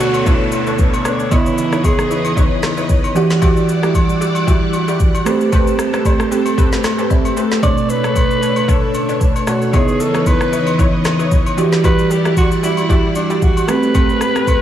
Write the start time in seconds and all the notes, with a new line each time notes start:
Already playing: B2 D3 A3 B3 D4 F#4 A4 C#5, downlifter
0.00 A4 B4 C#5, shaker
0.14 high agogo, shaker
0.26 D4 E4 A4 B4 C#5, kick, shaker
0.52 high agogo, shaker
0.67 D4 A4 B4 C#5, shaker
0.79 kick, shaker
0.94 high agogo, shaker
1.05 D4 A4 B4 C#5, cross-stick, shaker
1.19 shaker
1.30 C#3 E3 B3 E4 B4 C#5 D#5, kick, high agogo, shaker
1.46 shaker
1.58 shaker
1.72 D#4 E4 B4 C#5, cross-stick, shaker
1.84 G#4, kick, high agogo, shaker
1.99 cross-stick, shaker
2.10 D#4 E4 B4 C#5, shaker
2.25 high agogo, shaker
2.36 D#4 E4 B4 C#5, kick, shaker
2.63 cross-stick, snare, high agogo, shaker
2.77 D#4 E4 B4 C#5, shaker
2.89 kick, shaker
3.04 high agogo, shaker
3.15 E3 G3 D4 E4 F#4 G4 D5 F#5, shaker
3.30 snare, shaker
3.41 E4 F#4 G4 D5, kick, high agogo, shaker
3.57 shaker
3.69 shaker
3.82 E4 F#4 G4 D5, cross-stick, shaker
3.94 kick, high agogo, shaker
4.09 shaker
4.21 E4 F#4 G4 D5, shaker
4.35 high agogo, shaker
4.47 E4 F#4 G4 D5, kick, shaker
4.73 high agogo, shaker
4.88 E4 F#4 G4 D5, shaker
5.00 kick, shaker
5.15 high agogo, shaker
5.25 A3 C4 G4 A4 B4 C5, cross-stick, shaker
5.41 shaker
5.52 C4 G4 A4 B4, kick, high agogo, shaker
5.67 shaker
5.79 cross-stick, shaker
5.93 C4 G4 A4 B4, cross-stick, shaker
6.05 kick, high agogo, low woodblock, shaker
6.20 cross-stick, shaker
6.31 C4 G4 A4 B4, shaker
6.46 high agogo, shaker
6.57 C4 G4 A4 B4, kick, shaker
6.72 snare, shaker
6.84 cross-stick, snare, high agogo, shaker
6.98 C4 G4 A4 B4, shaker
7.10 E5, kick, low woodblock, shaker
7.25 high agogo, shaker
7.36 C4 G4 A4 B4 C6, shaker
7.51 snare, shaker
7.62 B2 A3 D4 A4 B4 C#5 D5, kick, high agogo, shaker
7.78 shaker
7.90 B4, shaker
8.03 D4 A4 B4 C#5, cross-stick, shaker
8.15 kick, high agogo, shaker
8.31 shaker
8.42 D4 A4 B4 C#5, shaker
8.56 high agogo, shaker
8.68 D4 A4 B4 C#5, kick, shaker
8.94 high agogo, shaker
9.09 D4 A4 B4 C#5, shaker
9.21 kick, shaker
9.36 high agogo, shaker
9.47 B2 A3 D4 F#4 A4 B4 C#5 D5, cross-stick, shaker
9.62 shaker
9.73 C#3 E3 B3 D#4 E4 G#4 B4 C#5 D#5, kick, high agogo, shaker
9.88 shaker
10.00 A4, shaker
10.14 D#4 E4 B4 C#5, cross-stick, shaker
10.26 B4, kick, high agogo, shaker
10.41 cross-stick, shaker
10.52 D#4 E4 B4 C#5, shaker
10.67 high agogo, shaker
10.78 D#4 E4 B4 C#5, kick, shaker
11.05 cross-stick, snare, high agogo, shaker
11.19 D#4 E4 B4 C#5, shaker
11.31 kick, shaker
11.46 high agogo, shaker
11.57 E3 G3 D4 E4 F#4 G4 D5 F#5, shaker
11.72 snare, shaker
11.84 E4 F#4 G4 B4 D5, kick, high agogo, shaker
11.99 shaker
12.11 G4, shaker
12.25 E4 F#4 G4 D5, cross-stick, shaker
12.37 F#4, kick, high agogo, shaker
12.52 shaker
12.63 E4 F#4 G4 D5, shaker
12.77 high agogo, shaker
12.89 E4 F#4 G4 D5, kick, shaker
13.15 D4, high agogo, shaker
13.30 E4 F#4 G4 D5, shaker
13.42 F#4, kick, shaker
13.57 high agogo, shaker
13.67 A3 C4 G4 A4 B4, cross-stick, shaker
13.83 shaker
13.94 C4 G4 A4 B4, kick, high agogo, shaker
14.09 shaker
14.21 cross-stick, shaker
14.35 C4 G4 A4 B4, cross-stick, shaker
14.47 kick, high agogo, shaker